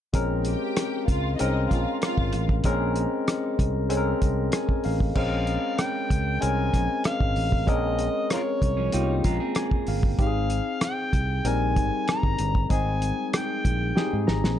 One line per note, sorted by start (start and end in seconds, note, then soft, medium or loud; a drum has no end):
0.13 0.54 A#1 loud
0.13 0.95 G#3 medium
0.13 0.95 C4 medium
0.13 0.95 C#4 medium
0.13 0.95 A#4 medium
0.13 kick loud
0.13 closed hi-hat medium
0.45 1.04 G4 medium
0.45 1.04 G5 medium
0.45 closed hi-hat medium
0.77 cross-stick medium
0.77 closed hi-hat medium
1.08 1.35 C#2 medium
1.08 1.33 F4 medium
1.08 1.33 F5 medium
1.08 kick medium
1.08 closed hi-hat medium
1.38 1.67 C2 medium
1.38 2.20 G#3 medium
1.38 2.20 C4 medium
1.38 2.21 C#4 medium
1.38 1.64 D#4 medium
1.38 2.21 A#4 medium
1.38 1.64 D#5 medium
1.38 closed hi-hat medium
1.70 1.84 A#1 medium
1.70 1.95 F4 medium
1.70 1.95 F5 medium
1.70 kick medium
1.70 cross-stick soft
1.70 closed hi-hat medium
2.02 2.46 F4 medium
2.02 2.46 F5 loud
2.02 cross-stick medium
2.02 closed hi-hat medium
2.18 2.31 G#1 medium
2.18 kick medium
2.33 2.60 A1 medium
2.33 closed hi-hat medium
2.49 kick medium
2.64 3.05 A#1 loud
2.64 3.46 G#3 medium
2.64 3.46 C4 medium
2.64 3.46 C#4 medium
2.64 3.46 A#4 loud
2.64 kick loud
2.64 closed hi-hat medium
2.96 closed hi-hat medium
3.28 cross-stick medium
3.28 closed hi-hat medium
3.59 4.13 C2 medium
3.59 kick medium
3.59 closed hi-hat medium
3.89 4.71 G#3 medium
3.89 4.71 C4 medium
3.89 4.71 C#4 medium
3.89 3.97 A4 medium
3.89 closed hi-hat medium
3.97 4.75 A#4 medium
4.22 4.49 C2 medium
4.22 kick medium
4.22 closed hi-hat medium
4.52 4.82 G#5 medium
4.52 cross-stick medium
4.52 closed hi-hat medium
4.69 kick medium
4.84 5.12 A1 medium
4.84 5.14 F5 medium
4.84 open hi-hat medium
5.00 kick medium
5.15 5.56 A#1 medium
5.15 5.97 G#3 medium
5.15 5.97 C4 medium
5.15 5.97 C#4 medium
5.15 5.97 A#4 medium
5.15 5.81 F5 medium
5.15 kick loud
5.15 crash medium
5.47 closed hi-hat medium
5.78 6.44 G5 medium
5.78 cross-stick medium
5.78 closed hi-hat medium
6.10 6.37 C#2 medium
6.10 kick medium
6.10 closed hi-hat medium
6.41 6.69 C2 medium
6.41 7.22 G#3 medium
6.41 7.22 C4 medium
6.41 7.23 C#4 medium
6.41 7.23 A#4 medium
6.41 7.05 G#5 loud
6.41 closed hi-hat medium
6.74 6.87 A#1 medium
6.74 kick medium
6.74 cross-stick soft
6.74 closed hi-hat medium
7.04 7.70 F5 medium
7.04 cross-stick loud
7.04 closed hi-hat medium
7.20 7.34 G#1 medium
7.20 kick medium
7.36 7.68 A1 medium
7.36 open hi-hat soft
7.52 kick medium
7.67 8.08 A#1 medium
7.67 8.48 G#3 medium
7.67 8.48 C4 medium
7.67 8.49 C#4 medium
7.67 8.49 A#4 medium
7.67 8.31 D#5 medium
7.67 kick loud
7.67 closed hi-hat medium
7.99 closed hi-hat medium
8.30 8.41 F4 soft
8.30 8.41 A#4 soft
8.30 9.22 C#5 medium
8.30 cross-stick medium
8.30 closed hi-hat medium
8.62 8.89 C2 medium
8.62 kick medium
8.62 closed hi-hat medium
8.77 8.92 F3 soft
8.77 8.92 C#4 medium
8.92 9.20 C2 medium
8.92 9.23 G3 medium
8.92 9.74 A#3 medium
8.92 9.23 D#4 medium
8.92 9.74 F4 medium
8.92 9.74 G5 medium
8.92 closed hi-hat medium
9.24 9.38 A#1 medium
9.24 9.40 G#3 medium
9.24 9.39 F4 medium
9.24 9.54 A#5 medium
9.24 kick medium
9.24 closed hi-hat medium
9.40 10.15 C4 medium
9.40 10.15 G#4 medium
9.55 9.86 G#5 medium
9.55 cross-stick medium
9.55 closed hi-hat medium
9.71 kick medium
9.87 10.14 G1 medium
9.87 10.17 F5 medium
9.87 open hi-hat medium
10.03 kick medium
10.19 10.59 G#1 medium
10.19 11.00 C4 medium
10.19 11.00 D#4 medium
10.19 10.26 G4 medium
10.19 10.79 F5 medium
10.19 kick loud
10.19 closed hi-hat medium
10.27 11.04 G#4 medium
10.50 closed hi-hat medium
10.81 11.49 G5 medium
10.81 cross-stick medium
10.81 closed hi-hat medium
11.13 11.40 C2 medium
11.13 kick medium
11.13 closed hi-hat medium
11.44 11.77 A#1 medium
11.44 12.26 G3 medium
11.44 12.26 C4 medium
11.44 12.26 D#4 medium
11.44 12.26 A#4 medium
11.44 12.09 G#5 medium
11.44 closed hi-hat medium
11.76 11.90 G#1 medium
11.76 kick medium
11.76 closed hi-hat medium
12.08 12.67 A#5 loud
12.08 cross-stick medium
12.08 closed hi-hat medium
12.23 12.37 G1 medium
12.23 kick medium
12.38 12.66 G1 medium
12.38 closed hi-hat medium
12.55 kick medium
12.69 13.11 G#1 medium
12.69 13.51 G#3 medium
12.69 13.51 C4 medium
12.69 13.51 D#4 medium
12.69 13.52 G#4 medium
12.69 13.30 G#5 medium
12.69 kick loud
12.69 closed hi-hat medium
13.02 closed hi-hat medium
13.33 14.25 G5 medium
13.33 cross-stick medium
13.33 closed hi-hat medium
13.65 13.92 A#1 medium
13.65 kick medium
13.65 closed hi-hat medium
13.95 14.59 C4 medium
13.95 14.59 D#4 medium
13.95 14.59 G4 medium
13.95 14.59 G#4 medium
13.95 snare medium
14.13 14.26 G#2 medium
14.27 14.41 G#1 medium
14.27 14.57 A#5 medium
14.27 snare medium
14.44 14.57 A#1 medium
14.44 snare medium